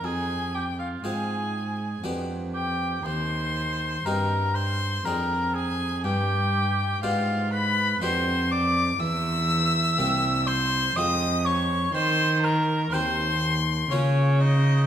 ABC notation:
X:1
M:3/4
L:1/16
Q:1/4=61
K:Gphr
V:1 name="Violin"
a2 g f a4 z2 g2 | c'4 b2 c'2 b2 a2 | g4 f2 =b2 c'2 d'2 | [K:Cphr] =e'6 c'2 _e'2 d'2 |
c'2 b2 c'4 d2 e2 |]
V:2 name="Oboe"
A2 G F A4 z2 G2 | c4 B2 c2 B2 A2 | G4 F2 =B2 c2 d2 | [K:Cphr] =e6 c2 _e2 d2 |
c2 B2 c3 z D2 E2 |]
V:3 name="Harpsichord"
F,,4 [A,,CFc]4 [F,,=B,DG]4 | E,,4 [G,,CEG]4 [F,,CDA]4 | G,,4 [A,,=B,DG]4 [F,,B,DG]4 | [K:Cphr] =E,,4 [C,,B,CG]4 [F,,A,CF]4 |
E,4 [E,,CG]4 [D,B,DF]4 |]
V:4 name="Cello" clef=bass
F,,4 A,,4 F,,4 | E,,4 G,,4 F,,4 | G,,4 A,,4 F,,4 | [K:Cphr] =E,,4 C,,4 F,,4 |
E,4 E,,4 D,4 |]